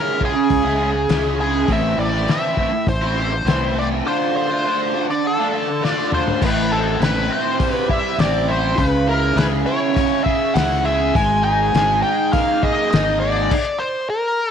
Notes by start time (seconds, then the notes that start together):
Already playing: C#3 G#3 C#4 E4 A#4
0.20 C#3 G#3 C#4 E4, kick
0.25 G#4
0.34 muted overdriven electric guitar stroke
0.50 C#2, kick, open hi-hat
0.63 G#3 C#4 E4
0.78 C#3 G#3 C#4 E4
0.94 muted overdriven electric guitar stroke
1.09 C#2 C#3 G#3 C#4 E4, snare, open hi-hat
1.24 G#3 C#4 E4
1.37 C#3 G#3 C#4 E4 G#4
1.67 A1 A2 E3 A3 C4 E4, kick, open hi-hat
1.72 E5
1.98 A1 D5
2.12 A3 C4 E4
2.27 A2 E3 A3 C4 E4, snare, open hi-hat
2.32 E5
2.56 E3 A3 C4 E4, kick
2.72 muted overdriven electric guitar stroke
2.87 A1 C5, kick, open hi-hat
3.02 A3 C4 E4
3.16 E3 A3 C4 E4
3.33 muted overdriven electric guitar stroke
3.45 C2 A2 E3 A3 C4, snare, open hi-hat
3.49 E4
3.59 A3 C4 E4
3.75 E3 A3 C4 E4 D5
4.04 D3 A3 D4 F4 C5
4.36 C5
4.50 A3 D4 F4
4.65 D3 A3 D4 F4
4.93 D3 A3 D4 F4
5.08 D5, muted overdriven electric guitar stroke
5.27 A4
5.37 A3 D4 F4
5.52 D3 A3 D4 F4
5.69 muted overdriven electric guitar stroke
5.81 D3 A3 D4 F4 D5, snare
5.96 A3 D4 F4
6.11 D3 A3 D4 F4 C5, mid tom
6.28 floor tom
6.41 A1 A2 B4, kick, crash
6.72 C4 A4
7.00 A1 E4 B4, snare, open hi-hat
7.30 C4 C5
7.59 G3, kick, open hi-hat
7.71 B4
7.88 E4 E5, kick
8.18 A1 C4 D5, snare, open hi-hat
8.48 E4 C5
8.78 C#2 C#3 B4, kick, open hi-hat
9.08 E4 A#4
9.36 C#2 G#4 B4, snare, open hi-hat
9.66 E4 C#5
9.96 C#4, kick, open hi-hat
10.24 G#4 E5, kick
10.54 C#2 E4 F#5, snare, open hi-hat
10.85 G#4 E5
11.14 G#1 G#3 G#5, kick, open hi-hat
11.43 D#4 G#5
11.74 G#1 G#4, snare, open hi-hat
12.03 D#4 G5
12.33 A#3 F5, kick, open hi-hat
12.63 G#4 D#5, kick
12.91 G#1 D#4 D#5, snare, open hi-hat
13.20 G#4 D5
13.51 kick, crash
13.79 C5
14.10 A#4